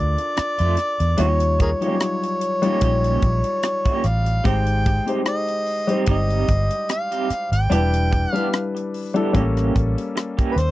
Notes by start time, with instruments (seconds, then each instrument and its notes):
Already playing: fingered electric bass D2, grand piano D4 F4 A4 A#4 D5, harmonica D5
0.18 muted clean electric guitar stroke, closed hi-hat
0.37 muted clean electric guitar stroke, muted fingered electric bass stroke, cross-stick, closed hi-hat
0.58 fingered electric bass F2, clean electric guitar F3 A3 D4 F4, closed hi-hat
0.77 muted clean electric guitar stroke, cross-stick, closed hi-hat
0.99 fingered electric bass E2, muted clean electric guitar stroke, closed hi-hat
1.17 fingered electric bass D#2, clean electric guitar F3 A#3 C#4 G4, grand piano G3 D#4 F4 C#5, closed hi-hat
1.22 harmonica C#5
1.40 muted clean electric guitar stroke, closed hi-hat
1.59 harmonica G#4 A#4 C#5, muted clean electric guitar stroke, kick, closed hi-hat
1.81 clean electric guitar F3 A#3 C#4 G4, grand piano F#3 D#4 F4 C#5, closed hi-hat
1.88 grand piano G3
2.00 muted clean electric guitar stroke, cross-stick, closed hi-hat
2.23 muted clean electric guitar stroke, closed hi-hat
2.41 closed hi-hat
2.62 clean electric guitar F3 A#3 C#4 G4, grand piano G3 D#4 F4 C#5, closed hi-hat
2.81 fingered electric bass A#1, clean electric guitar F3 A#3 C#4 G4, kick, closed hi-hat
3.04 closed hi-hat
3.22 fingered electric bass A#1, muted clean electric guitar stroke, kick, closed hi-hat
3.44 muted clean electric guitar stroke, closed hi-hat
3.63 muted clean electric guitar stroke, cross-stick, closed hi-hat
3.85 clean electric guitar F3 A#3 C#4 G4, kick, closed hi-hat
4.04 fingered electric bass A1, harmonica F5, muted clean electric guitar stroke, cross-stick, closed hi-hat
4.25 muted clean electric guitar stroke, closed hi-hat
4.44 fingered electric bass G#1, clean electric guitar G3 C4 D#4 G4, grand piano G#3 D#4 G4 C5, harmonica G5, kick, closed hi-hat
4.66 muted clean electric guitar stroke, closed hi-hat
4.86 muted clean electric guitar stroke, kick, closed hi-hat
5.06 clean electric guitar G3 C4 D#4 G4, grand piano G#3 D#4 G4 C5, closed hi-hat
5.25 harmonica D#5, muted clean electric guitar stroke, cross-stick, closed hi-hat
5.47 muted clean electric guitar stroke, closed hi-hat
5.66 open hi-hat
5.87 grand piano G3 D#4 G4 C5, clean electric guitar G3 C4 D#4 G4, closed hi-hat
6.06 fingered electric bass G1, clean electric guitar G3 C4 D#4 G4, kick, closed hi-hat
6.11 harmonica D#5
6.30 closed hi-hat
6.48 fingered electric bass G1, muted clean electric guitar stroke, kick, closed hi-hat
6.70 muted clean electric guitar stroke, closed hi-hat
6.89 harmonica F5, muted clean electric guitar stroke, cross-stick, closed hi-hat
7.12 clean electric guitar G3 C4 D#4 G4, closed hi-hat
7.30 muted clean electric guitar stroke, muted fingered electric bass stroke, cross-stick, closed hi-hat
7.52 fingered electric bass G#1, harmonica G5, muted clean electric guitar stroke, closed hi-hat
7.70 fingered electric bass E1, grand piano G3 D4 E4 B4, clean electric guitar G3 B3 D4 G4, closed hi-hat
7.93 muted clean electric guitar stroke, closed hi-hat
8.11 muted clean electric guitar stroke, kick, closed hi-hat
8.33 grand piano G3 D4 E4 B4, clean electric guitar G3 B3 D4 G4, harmonica F5, closed hi-hat
8.53 muted clean electric guitar stroke, cross-stick, closed hi-hat
8.75 muted clean electric guitar stroke, closed hi-hat
8.94 open hi-hat
9.14 grand piano G3 D4 E4 A4, clean electric guitar G3 B3 D4 G4, closed hi-hat
9.33 fingered electric bass A1, clean electric guitar E3 A#3 C#4 G4, grand piano G3 A#3 C#4 A4, kick, closed hi-hat
9.57 cross-stick, closed hi-hat
9.74 fingered electric bass A1, muted clean electric guitar stroke, kick, closed hi-hat
9.97 muted clean electric guitar stroke, closed hi-hat
10.16 muted clean electric guitar stroke, cross-stick, closed hi-hat
10.37 clean electric guitar E3 A#3 C#4 G4, kick, closed hi-hat
10.52 harmonica B4
10.56 fingered electric bass D#2, harmonica C5, muted clean electric guitar stroke, cross-stick, closed hi-hat